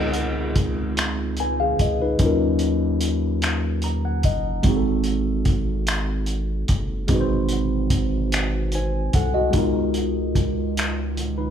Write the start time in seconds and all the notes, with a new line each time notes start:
Already playing: C#2 G#3 B3 C4 D#4 F4 G#4 A#4
0.14 closed hi-hat
0.56 kick, closed hi-hat
0.97 finger snap, closed hi-hat
1.37 B4 G#5, closed hi-hat
1.60 G#4 F5
1.79 C#2 D#5, kick, closed hi-hat
2.02 D#4 B4
2.18 D#2 F#3 C#4, kick, closed hi-hat
2.22 D#4 F4 A#4
2.59 closed hi-hat
3.01 closed hi-hat
3.42 finger snap, closed hi-hat
3.82 A#5, closed hi-hat
4.05 F#5
4.23 F#1 D#5, kick, closed hi-hat
4.62 G#1 G#3 C4 D#4, kick, closed hi-hat
4.68 F#4 G#4
4.76 A4
5.04 closed hi-hat
5.45 kick, closed hi-hat
5.87 finger snap, closed hi-hat
6.26 closed hi-hat
6.68 F#1, kick, closed hi-hat
7.07 G#1 G#3 C4 D#4, kick, closed hi-hat
7.13 F#4 B4
7.21 C5
7.49 closed hi-hat
7.90 kick, closed hi-hat
8.32 finger snap, closed hi-hat
8.72 C5 G#5, closed hi-hat
9.13 C2 A4 F#5, kick, closed hi-hat
9.34 F#4 D#5
9.51 C#2 G#3 B3 D#4, kick, closed hi-hat
9.57 F4 A#4
9.94 closed hi-hat
10.35 kick, closed hi-hat
10.77 finger snap, closed hi-hat
11.17 closed hi-hat
11.38 D#4 B4